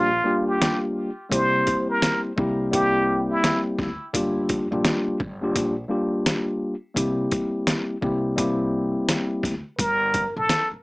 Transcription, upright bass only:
Already playing: A#1
1.32 C2
2.38 C2
3.79 D2
4.14 G1
4.72 A#1
5.07 muted upright bass stroke
5.20 G1
5.56 A#1
6.96 C2
8.03 C2
9.44 D2
9.79 G1
10.36 A#1
10.72 muted upright bass stroke

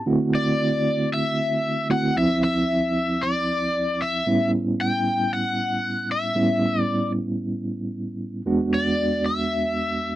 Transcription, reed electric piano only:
0.06 D3 A3 C4 E4 F#4
1.90 D3 A3 C4 E4 F#4
2.16 D2 F3 C4 E4
4.26 A2 G3 B3 C#4 E4
6.35 A2 G3 B3 C#4 E4
8.46 E2 G#3 B3 D4 F#4

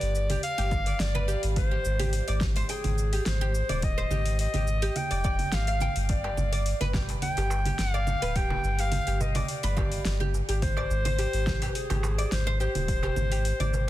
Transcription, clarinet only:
Already playing: D5
0.43 F5
1.00 D5
1.57 C5
2.70 G#4
3.27 C5
3.84 D#5
4.40 D#5
4.97 G5
5.54 F5
6.10 D5
7.22 G5
7.79 F5
8.36 G5
8.80 F5
9.21 D#5
9.50 D5
10.63 C5
11.69 B4
11.76 G#4
12.33 C5
12.61 C5

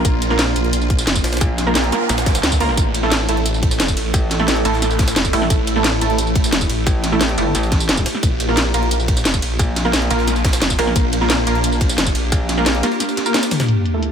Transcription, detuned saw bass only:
0.05 A#1
0.56 A#1
1.07 F1
1.24 A#1
2.09 A#1
2.43 D2
2.77 A1
3.29 A1
3.80 E1
3.97 A1
4.65 A1
5.16 E1
5.50 A1
6.01 A1
6.53 E1
6.70 A1
8.23 A#1
8.74 A#1
9.25 F1
9.42 A#1
10.10 A#1
10.62 F1
10.96 A#1
11.47 A#1
11.98 F1
12.15 A#1

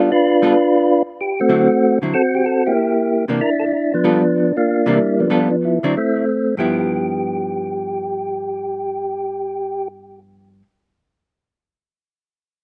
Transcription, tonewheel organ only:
Already playing: D4 F4
0.12 D4 F4 B4
1.21 G4
1.40 A3 C4 F#4
2.14 C4 F#4 A4
2.35 G4
2.46 A4
2.66 A#3 E4 G4
3.41 D4 E4 A#4
3.59 A4
3.73 E4
3.94 F3 B3 D4
4.57 A#3 D4 F4
4.88 G3 A#3 E4
5.20 F3 B3 D4
5.51 D4
5.65 E4
5.84 D4
5.97 A3 C4 E4
6.59 G4

